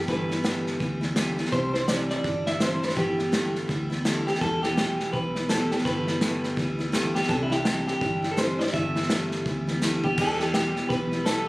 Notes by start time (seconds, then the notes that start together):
0.01 snare
0.08 G2 D3 E3 G3 B3 E4 B4, kick, snare
0.29 E3 G3 B3 E4, snare
0.43 G2 D3 E3 G3 B3 E4, snare, hi-hat pedal
0.67 snare
0.79 D2 E3 G3 B3 E4, kick, snare
1.01 E3 G3 B3 E4, snare
1.16 G2 D3 E3 G3 B3 E4, snare, hi-hat pedal
1.36 E3 G3 B3 E4, snare
1.45 snare
1.52 C2 C3 E3 G3 D4 E4 C5, kick, snare
1.73 G3 D4 E4 C5, snare
1.88 C3 E3 G3 D4 E4 D5, snare, hi-hat pedal
2.10 D5, snare
2.24 G1 E3 G3 D4, kick, snare
2.28 E4
2.46 G3 D4 E4 E5, snare
2.60 C3 E3 G3 D4 E4 C5, snare, hi-hat pedal
2.82 G3 D4 E4 B4, snare
2.89 snare
2.96 G1 G2 D3 E3 G3 B3 E4 G4, kick, snare
3.18 E3 G3 B3 E4, snare
3.32 G2 D3 E3 G3 B3 E4, snare, hi-hat pedal
3.55 snare
3.67 D2 E3 G3 B3 E4, kick, snare
3.90 E3 G3 B3 E4, snare
4.05 G2 D3 E3 G3 B3 E4, snare, hi-hat pedal
4.27 E3 G3 B3 E4 G4, snare
4.35 snare
4.41 E1 E2 B2 E3 G3 B3 E4 A4, kick, snare
4.63 E3 G3 B3 E4 G4, snare
4.77 E2 B2 E3 G3 B3 E4 G4, snare, hi-hat pedal
5.00 snare
5.13 B1 E3 G3 B3 E4 B4, kick, snare
5.35 E3 G3 B3 E4, snare
5.49 E2 B2 E3 G3 B3 E4 A4, snare, hi-hat pedal
5.71 E3 G3 B3 E4 G4, snare
5.78 snare
5.85 G1 G2 D3 E3 G3 B3 E4 B4, kick, snare
6.07 E3 G3 B3 E4, snare
6.21 G2 D3 E3 G3 B3 E4, snare, hi-hat pedal
6.43 snare
6.56 D2 E3 G3 B3 E4, kick, snare
6.79 E3 G3 B3 E4, snare
6.92 G2 D3 E3 G3 B3 E4, snare, hi-hat pedal
7.14 E3 G3 B3 E4 G4, snare
7.23 snare
7.28 C2 C3 E3 G3 D4 E4 A4, kick, snare
7.43 E4
7.50 G3 D4 E4 G4, snare
7.65 C3 E3 G3 D4 E4, snare, hi-hat pedal
7.87 G4, snare
8.01 G1 E3 G3 D4 E4, kick, snare
8.22 G3 D4 E4, snare
8.31 A4
8.37 C3 E3 G3 D4 E4 C5, snare, hi-hat pedal
8.59 G3 D4 E4 D5, snare
8.67 snare
8.73 G1 G2 D3 E3 G3 B3 E4 E5, kick, snare
8.96 E3 G3 B3 E4, snare
9.03 snare
9.09 G2 D3 E3 G3 B3 E4, snare, hi-hat pedal
9.31 snare
9.46 D2 E3 G3 B3 E4, kick, snare
9.67 E3 G3 B3 E4, snare
9.81 G2 D3 E3 G3 B3 E4, snare, hi-hat pedal
10.04 E3 G3 B3 E4 G4, floor tom
10.18 E2 B2 E3 G3 B3 E4 A4, kick, snare, crash
10.39 E3 G3 B3 E4 G4, snare
10.54 E2 B2 E3 G3 B3 E4 G4, snare, hi-hat pedal
10.76 snare
10.89 B1 E3 G3 B3 E4 B4, kick, snare
11.12 E3 G3 B3 E4, snare
11.26 E2 B2 E3 G3 B3 E4 A4, snare, hi-hat pedal